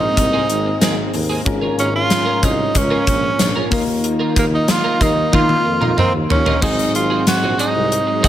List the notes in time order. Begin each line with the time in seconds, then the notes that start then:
Already playing: G#2 G#3 A#3 C4 D#4 G#4 A#4
0.01 muted clean electric guitar stroke
0.17 C2, muted clean electric guitar stroke, kick, closed hi-hat
0.33 A#3 C4 G#4
0.49 G#1, muted clean electric guitar stroke, closed hi-hat
0.66 muted clean electric guitar stroke
0.81 G#1 A#3 C4 G#4, snare, closed hi-hat
1.14 D#2, muted clean electric guitar stroke, open hi-hat
1.29 A#3 C4 G#4
1.45 G#1 G#2 F3 A#3 C#4 F4 G#4 A#4, muted clean electric guitar stroke, kick
1.61 C#4 F4 A#4
1.78 G#1 C#4 F4 A#4, closed hi-hat
1.94 F4, muted clean electric guitar stroke
2.10 muted clean electric guitar stroke, snare, closed hi-hat
2.26 C#4 F4 A#4
2.42 C2 C#4 D#4 F4 A#4, kick, closed hi-hat
2.58 muted clean electric guitar stroke
2.74 C#2 C#4, muted clean electric guitar stroke, kick, closed hi-hat
2.90 C#4 F4 A#4
3.07 A#1, kick, closed hi-hat
3.23 muted clean electric guitar stroke
3.39 A#1, muted clean electric guitar stroke, snare, closed hi-hat
3.56 C#4 F4 A#4
3.70 D#2 D#3 A#3 D#4 F4 A#4, kick, open hi-hat
3.88 muted clean electric guitar stroke
4.04 muted clean electric guitar stroke, closed hi-hat
4.19 D#4 F4 A#4
4.35 D#2 A#3 D#4 F4 A#4, kick, closed hi-hat
4.51 D#4, muted clean electric guitar stroke
4.68 F4, muted clean electric guitar stroke, snare, closed hi-hat
4.84 D#4 F4 A#4
5.00 D#2 D#4 F4 A#4, kick, closed hi-hat
5.17 muted clean electric guitar stroke
5.32 D#3 D#4 F4 A#4, kick, high tom
5.49 muted clean electric guitar stroke, high tom
5.65 F2, muted clean electric guitar stroke
5.81 D#4 F4 A#4, mid tom
5.97 C4 D#4 F4 A#4, mid tom
6.13 D#2
6.29 D#2 C#4, muted clean electric guitar stroke, floor tom
6.46 D#4 F4 A#4, floor tom
6.61 G#1 G#2 F#3 G#3 C4 D#4 F#4 G#4 C5, kick, crash
6.78 muted clean electric guitar stroke, closed hi-hat
6.94 G#1 F4, muted clean electric guitar stroke, closed hi-hat
7.10 C4 F#4 G#4
7.27 F#4, muted clean electric guitar stroke, snare, closed hi-hat, tambourine
7.43 A#1 C4 F#4 G#4
7.58 C4 D#4 F#4 G#4, closed hi-hat
7.75 C2, muted clean electric guitar stroke
7.92 closed hi-hat
8.07 muted clean electric guitar stroke
8.23 A#1 C4 D#4 F#4 G#4, kick, closed hi-hat